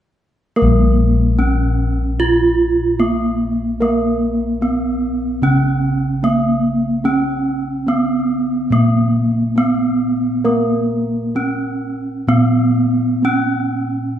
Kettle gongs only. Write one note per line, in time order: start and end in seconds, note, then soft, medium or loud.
0.57 2.96 A#4 medium
0.62 5.42 A#1 medium
1.39 1.47 B3 soft
2.99 3.07 B3 soft
3.80 6.20 A#4 medium
4.61 4.69 B3 soft
5.42 7.83 C#3 medium
6.23 6.31 B3 soft
7.04 9.53 C#4 medium
7.87 7.95 B3 soft
8.70 11.31 A#2 medium
9.56 9.64 B3 soft
10.45 13.18 A#4 medium
11.35 11.43 B3 soft
12.27 14.19 A#2 medium
13.23 13.31 B3 soft